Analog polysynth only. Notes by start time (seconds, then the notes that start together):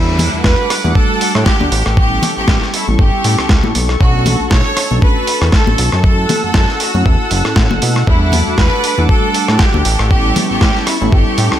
Already playing: G3 A3 D4 F#4
0.83 G3 A3 D4 F#4
1.96 G3 B3 C#4 E4
2.87 G3 B3 C#4 E4
3.99 A3 C#4 D4 F#4
4.90 A3 C#4 D4 F#4
6.04 C#4 E4 F#4
6.94 A3 C#4 E4 F#4
8.07 G3 A3 D4 F#4
8.97 G3 A3 D4 F#4
10.10 G3 B3 C#4 E4
11.00 G3 B3 C#4 E4